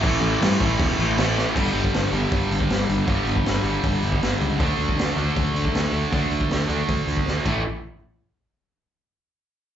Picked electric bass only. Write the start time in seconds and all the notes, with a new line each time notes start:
0.03 A1
0.21 A1
0.41 G2
0.60 A1
0.79 E1
0.99 A1
1.18 A1
1.55 G1
1.74 G1
1.94 G1
2.12 G1
2.32 G1
2.51 G1
2.70 G1
2.89 G1
3.07 G1
3.26 G1
3.45 G1
3.64 G1
3.83 G1
4.03 G1
4.21 G1
4.42 C#2
4.60 D2
4.79 D2
4.97 D2
5.16 D2
5.37 D2
5.54 D2
5.74 D2
5.93 D2
6.12 D2
6.31 D2
6.51 D2
6.69 D2
6.89 D2
7.08 D2
7.26 D2
7.46 A1